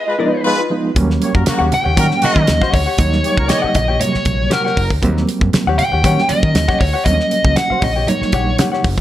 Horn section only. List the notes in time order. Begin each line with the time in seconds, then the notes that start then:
0.07 G#3 F4 B4
0.44 G#3 F4 B4
1.22 A#3 G4 C#5
1.34 G3 F#4 A#4
1.46 C#3 A#3 F#4
1.97 G3 F#4 A#4
2.21 C#3 A#3 F#4
3.24 A#3 G4 C#5
3.38 G3 F#4 A#4
3.48 A#3 G4 C#5